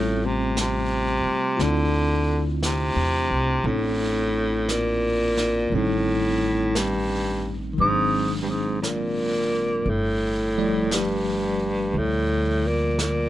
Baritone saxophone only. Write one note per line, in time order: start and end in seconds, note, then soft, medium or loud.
0.00 0.27 A2 medium
0.26 0.58 C3 medium
0.61 1.63 C3 medium
1.62 2.46 D3 medium
2.65 3.68 C3 medium
3.67 4.73 A2 medium
4.72 5.77 A#2 medium
5.75 6.78 A2 medium
6.76 7.62 G2 medium
7.81 8.36 G#2 medium
8.42 8.52 G2 soft
8.50 8.82 G#2 medium
8.82 9.91 A#2 medium
9.90 10.95 A2 medium
10.94 12.00 G2 medium
11.98 12.69 A2 medium
12.68 13.00 A#2 medium
13.01 13.29 A#2 medium